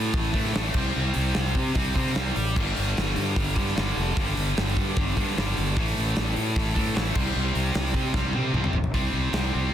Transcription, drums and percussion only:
0.13 kick, open hi-hat
0.33 kick, open hi-hat
0.46 snare
0.55 snare, open hi-hat
0.74 kick, crash
1.14 open hi-hat
1.34 snare, open hi-hat
1.54 kick, open hi-hat
1.75 kick, open hi-hat
1.95 kick, open hi-hat
2.07 snare
2.15 snare, open hi-hat
2.36 open hi-hat
2.56 kick, crash
2.77 open hi-hat
2.97 snare, open hi-hat
3.16 open hi-hat
3.36 kick, open hi-hat
3.56 kick, open hi-hat
3.67 snare
3.77 snare, open hi-hat
3.97 open hi-hat
4.17 kick, open hi-hat
4.37 open hi-hat
4.57 snare, open hi-hat
4.77 kick, open hi-hat
4.96 kick, open hi-hat
5.17 kick, open hi-hat
5.28 snare
5.37 snare, open hi-hat
5.57 open hi-hat
5.76 kick, open hi-hat
5.97 open hi-hat
6.16 snare, open hi-hat
6.36 open hi-hat
6.56 kick, open hi-hat
6.76 kick, open hi-hat
6.96 snare, open hi-hat
7.15 kick, crash
7.55 open hi-hat
7.74 snare, open hi-hat
7.94 kick, open hi-hat
8.14 kick, snare
8.33 high tom
8.54 mid tom
8.64 mid tom
8.73 floor tom
8.84 floor tom
8.94 kick, open hi-hat
9.33 snare, open hi-hat

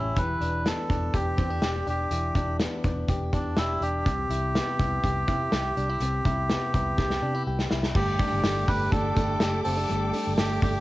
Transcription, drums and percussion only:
0.16 kick, closed hi-hat
0.42 closed hi-hat
0.66 snare, closed hi-hat
0.90 kick, closed hi-hat
1.14 kick, closed hi-hat
1.38 kick, closed hi-hat
1.62 snare, closed hi-hat
1.87 closed hi-hat
2.11 closed hi-hat
2.35 kick, closed hi-hat
2.60 snare, closed hi-hat
2.84 kick, closed hi-hat
3.08 kick, closed hi-hat
3.33 kick, closed hi-hat
3.56 snare, closed hi-hat
3.82 closed hi-hat
4.06 kick, closed hi-hat
4.31 closed hi-hat
4.55 snare, closed hi-hat
4.79 kick, closed hi-hat
5.04 kick, closed hi-hat
5.28 kick, closed hi-hat
5.52 snare, closed hi-hat
5.77 closed hi-hat
6.00 closed hi-hat
6.25 kick, closed hi-hat
6.50 snare, closed hi-hat
6.74 kick, closed hi-hat
6.98 kick, snare
7.10 snare
7.59 snare
7.71 snare
7.83 snare
7.95 kick, crash, tambourine
8.19 kick, hi-hat pedal, open hi-hat
8.43 snare, hi-hat pedal, open hi-hat, tambourine
8.68 kick, hi-hat pedal, open hi-hat, tambourine
8.92 kick, hi-hat pedal, open hi-hat, tambourine
9.17 kick, hi-hat pedal, open hi-hat, tambourine
9.40 snare, hi-hat pedal, open hi-hat, tambourine
9.65 hi-hat pedal, open hi-hat, tambourine
9.89 hi-hat pedal, open hi-hat, tambourine
10.14 hi-hat pedal, open hi-hat, tambourine
10.38 snare, hi-hat pedal, open hi-hat, tambourine
10.62 kick, hi-hat pedal, open hi-hat, tambourine

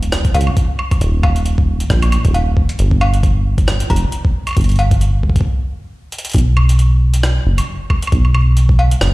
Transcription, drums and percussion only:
0.03 closed hi-hat
0.12 cross-stick, closed hi-hat
0.25 kick, closed hi-hat
0.35 closed hi-hat, cowbell
0.41 closed hi-hat
0.47 high woodblock
0.57 kick, closed hi-hat
0.79 high woodblock
0.91 kick, closed hi-hat, high woodblock
1.01 closed hi-hat
1.23 kick, cowbell, high woodblock
1.36 closed hi-hat
1.46 closed hi-hat
1.58 kick
1.80 closed hi-hat
1.90 kick, cross-stick, closed hi-hat
2.02 closed hi-hat, high woodblock
2.12 closed hi-hat, high woodblock
2.25 kick, closed hi-hat
2.34 closed hi-hat, cowbell
2.57 kick
2.69 closed hi-hat
2.79 closed hi-hat
2.91 kick
3.01 cowbell, high woodblock
3.14 closed hi-hat
3.23 kick, closed hi-hat
3.58 kick, closed hi-hat
3.68 cross-stick, closed hi-hat
3.80 closed hi-hat
3.90 kick, closed hi-hat, cowbell
3.96 closed hi-hat
4.12 closed hi-hat
4.25 kick
4.47 closed hi-hat, high woodblock
4.49 high woodblock
4.51 high woodblock
4.53 high woodblock
4.55 kick, closed hi-hat, high woodblock
4.61 closed hi-hat
4.64 closed hi-hat
4.69 closed hi-hat
4.71 closed hi-hat
4.76 closed hi-hat
4.79 closed hi-hat, cowbell
4.91 kick, closed hi-hat
5.01 closed hi-hat
5.23 kick
5.30 kick
5.36 kick, closed hi-hat
5.41 kick
6.12 closed hi-hat
6.18 closed hi-hat
6.25 closed hi-hat
6.30 closed hi-hat
6.32 closed hi-hat
6.33 kick, closed hi-hat
6.36 closed hi-hat
6.38 closed hi-hat
6.57 high woodblock
6.69 closed hi-hat
6.79 closed hi-hat
7.14 closed hi-hat
7.23 cross-stick, closed hi-hat
7.58 closed hi-hat, high woodblock
7.90 kick, high woodblock
8.03 closed hi-hat
8.07 high woodblock
8.12 kick, closed hi-hat
8.25 high woodblock
8.35 high woodblock
8.57 closed hi-hat
8.69 kick
8.79 cowbell
8.91 closed hi-hat
9.01 cross-stick, closed hi-hat

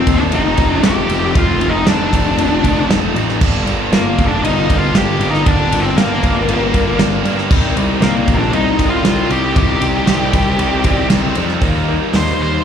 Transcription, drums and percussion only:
0.07 kick, ride
0.32 ride
0.57 kick, ride
0.83 snare, ride
1.10 ride
1.35 kick, ride
1.61 ride
1.87 snare, ride
2.13 kick, ride
2.38 ride
2.64 kick, ride
2.90 snare, ride
3.16 ride
3.29 snare
3.41 kick, crash
3.67 ride
3.93 snare, ride
4.18 kick, ride
4.45 ride
4.70 kick, ride
4.95 snare, ride
5.21 ride
5.34 snare
5.46 kick, ride
5.72 ride
5.98 snare, ride
6.23 kick, ride
6.49 ride
6.74 kick, ride
6.99 snare, ride
7.25 ride
7.38 snare
7.51 kick, crash
7.77 ride
8.02 snare, ride
8.28 kick, ride
8.53 ride
8.79 kick, ride
9.05 snare, ride
9.30 ride
9.56 kick, ride
9.81 ride
10.07 snare, ride
10.33 kick, ride
10.59 ride
10.84 kick, ride
11.10 snare, ride
11.35 ride
11.48 snare
11.61 kick, open hi-hat
12.14 snare, open hi-hat
12.27 snare

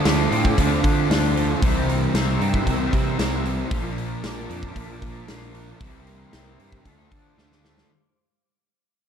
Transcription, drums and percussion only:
0.05 snare, open hi-hat
0.32 open hi-hat
0.45 kick
0.58 kick, open hi-hat
0.84 kick, open hi-hat
1.11 snare, open hi-hat
1.37 open hi-hat
1.62 kick, open hi-hat
1.89 open hi-hat
2.15 snare, open hi-hat
2.41 open hi-hat
2.54 kick
2.67 kick, open hi-hat
2.93 kick, open hi-hat
3.19 snare, open hi-hat
3.45 open hi-hat
3.71 kick, open hi-hat
3.98 open hi-hat
4.24 snare, open hi-hat
4.50 open hi-hat
4.63 kick
4.76 kick, open hi-hat
5.02 kick, open hi-hat
5.28 snare, open hi-hat
5.54 open hi-hat
5.81 kick, open hi-hat
6.07 open hi-hat
6.33 snare, open hi-hat
6.59 open hi-hat
6.72 kick
6.85 kick, open hi-hat
7.12 kick, open hi-hat
7.38 snare
7.52 snare
7.65 snare
7.78 snare

